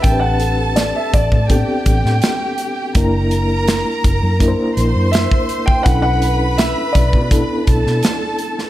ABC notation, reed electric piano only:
X:1
M:4/4
L:1/16
Q:1/4=82
K:Amix
V:1 name="Reed electric piano"
[=CDG^AB]4- [CDGAB] z3 [B,CDG=A]4- [B,CDGA] z3 | [^A,DE^A]4- [A,DEA] z3 [A,DEA=c]4- [A,DEAc] z3 | [CDEA]4- [CDEA] z3 [B,DEA]4- [B,DEA] z3 |]